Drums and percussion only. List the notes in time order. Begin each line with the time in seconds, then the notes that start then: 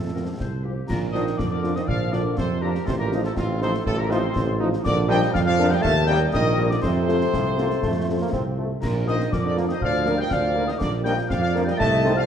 0.40 concert bass drum, snare
0.90 concert bass drum, snare, crash
1.15 snare
1.27 snare
1.39 concert bass drum, snare
1.64 snare
1.76 snare
1.88 concert bass drum
2.13 snare
2.38 concert bass drum, snare
2.75 snare
2.88 concert bass drum, snare, crash
3.12 snare
3.24 snare
3.37 concert bass drum, snare
3.62 snare
3.74 snare
3.86 concert bass drum
4.11 snare
4.36 concert bass drum, snare
4.73 snare
4.85 concert bass drum, snare, crash
5.11 snare
5.23 snare
5.35 concert bass drum, snare
5.60 snare
5.72 snare
5.84 concert bass drum
6.09 snare
6.34 concert bass drum, snare
6.71 snare
6.83 concert bass drum, snare, crash
7.09 snare
7.21 snare
7.33 concert bass drum, snare
7.58 snare
7.70 snare
7.83 concert bass drum, snare
8.33 concert bass drum, snare
8.83 concert bass drum, snare, crash
9.08 snare
9.20 snare
9.33 concert bass drum, snare
9.57 snare
9.69 snare
9.81 concert bass drum
10.06 snare
10.31 concert bass drum, snare
10.68 snare
10.81 concert bass drum, snare, crash
11.06 snare
11.18 snare
11.30 concert bass drum, snare
11.56 snare
11.68 snare
11.80 concert bass drum
12.05 snare